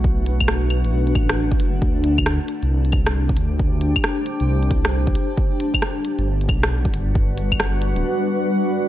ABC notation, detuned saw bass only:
X:1
M:4/4
L:1/16
Q:"Swing 16ths" 1/4=135
K:Dmix
V:1 name="Detuned saw bass" clef=bass
B,,,6- B,,, A,,, B,,,2 A,,,4 F,,,2 | D,,4- D,, z2 C,,6- C,, D,,2- | D,,3 z4 C,,6- C,, z2 | z6 z G,,,3 B,,,3 G,,,3- |
G,,,6- G,,, D,,, z8 |]